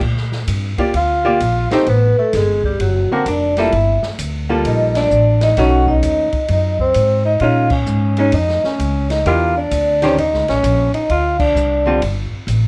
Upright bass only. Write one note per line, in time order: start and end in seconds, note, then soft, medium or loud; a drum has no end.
0.01 0.46 A#2 medium
0.47 0.76 G2 medium
0.78 muted upright bass stroke soft
0.94 1.39 D2 medium
1.40 1.69 A#1 medium
1.73 muted upright bass stroke soft
1.86 2.15 A1 medium
2.18 muted upright bass stroke soft
2.33 2.78 G1 medium
2.79 3.08 F#1 medium
3.26 3.71 F1 medium
3.73 4.01 G1 medium
4.19 4.64 D2 medium
4.65 5.10 A#1 medium
5.10 5.56 A1 medium
5.57 6.02 B1 medium
6.03 6.31 D#2 medium
6.33 muted upright bass stroke soft
6.49 6.94 F#2 medium
6.95 7.40 G#2 medium
7.40 7.86 A#2 medium
7.87 8.32 G#2 medium
8.33 8.61 F2 medium
8.64 muted upright bass stroke soft
8.79 9.24 C#2 medium
9.26 9.70 E2 medium
9.71 10.16 D2 medium
10.18 10.34 D#2 medium
10.34 10.48 C#2 medium
10.49 10.63 A#1 medium
10.63 10.92 A#1 loud
10.95 muted upright bass stroke soft
11.10 11.54 D2 medium
11.55 12.00 C2 medium
12.01 12.29 G1 medium
12.32 muted upright bass stroke soft
12.47 12.68 A1 medium